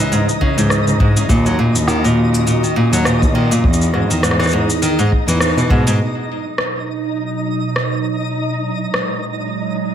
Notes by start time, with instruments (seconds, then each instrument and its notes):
Already playing: ambient pad C#3 E3, synth texture D#4 D#5
0.00 nylon-string guitar E3
0.12 nylon-string guitar G#2, shaker
0.29 shaker
0.41 nylon-string guitar C#3, kick
0.57 cello C#2, nylon-string guitar G#2, shaker
0.70 cross-stick, shaker
0.87 cello C#2, shaker
1.00 cello G#2, nylon-string guitar G#2, kick
1.16 nylon-string guitar C#3, shaker
1.29 cello D#2, nylon-string guitar A#2, ambient pad D#3 C#4 F#4, kick, shaker
1.46 nylon-string guitar F#3, shaker
1.59 nylon-string guitar A#2
1.74 cello D#2, shaker
1.88 nylon-string guitar D#3, cross-stick, shaker
2.04 nylon-string guitar A#2, shaker
2.34 shaker
2.47 nylon-string guitar A#2, shaker
2.63 nylon-string guitar D#3, shaker
2.76 nylon-string guitar A#2
2.92 cello D#2, nylon-string guitar F#3, shaker
3.05 nylon-string guitar A#2, cross-stick, shaker
3.22 cello D#2, kick, shaker
3.34 cello A#2, nylon-string guitar D#3
3.51 nylon-string guitar A#2, shaker
3.64 cello E2, ambient pad D#4 G#4, kick
3.73 shaker
3.81 shaker
3.94 nylon-string guitar G#2, cross-stick
4.10 cello E2, nylon-string guitar D#3, shaker
4.23 nylon-string guitar G#2, cross-stick, shaker
4.31 cross-stick
4.40 nylon-string guitar E3, cross-stick, shaker
4.43 cross-stick, shaker
4.47 shaker
4.49 shaker
4.51 nylon-string guitar G#2, shaker
4.70 shaker
4.82 nylon-string guitar D#3, shaker
4.99 nylon-string guitar G#2, shaker
5.12 kick
5.27 cello E2, nylon-string guitar E3, shaker
5.40 nylon-string guitar E3, cross-stick, shaker
5.57 cello B2, nylon-string guitar E3, shaker
5.70 nylon-string guitar G#2, cello B2, kick
5.87 nylon-string guitar G#2, shaker
5.99 ambient pad B2 F#3 D#4, synth texture D#4 D#5
6.58 cross-stick
7.76 cross-stick
8.35 ambient pad A#2 F#3 G#3
8.94 cross-stick